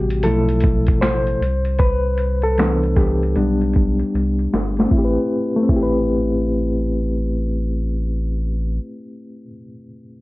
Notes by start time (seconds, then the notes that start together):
Already playing: A1 C3 G3 B3 F#4 G4
0.10 closed hi-hat
0.23 B1 B2 F3 A3 E4 A4, closed hi-hat
0.49 closed hi-hat
0.60 kick, closed hi-hat
0.87 kick, closed hi-hat
1.01 A1 C5, finger snap, snare, closed hi-hat
1.27 closed hi-hat
1.41 C2, closed hi-hat
1.65 closed hi-hat
1.79 B4, kick, closed hi-hat
2.18 closed hi-hat
2.42 A4, closed hi-hat
2.58 E3 B3 D4, finger snap, snare, closed hi-hat
2.83 closed hi-hat
2.96 G4, kick, snare, closed hi-hat
3.23 closed hi-hat
3.36 B1 G3 B3 D4, closed hi-hat
3.61 closed hi-hat
3.73 kick, closed hi-hat
3.99 closed hi-hat
4.14 C2, closed hi-hat
4.39 closed hi-hat
4.53 G1, snare, closed hi-hat
4.77 A3, snare, closed hi-hat
4.85 C4
4.91 A1 E4, kick
4.98 G4
5.05 B4
5.56 A3
5.63 C4
5.69 A1 E4, kick
5.76 G4
5.83 B4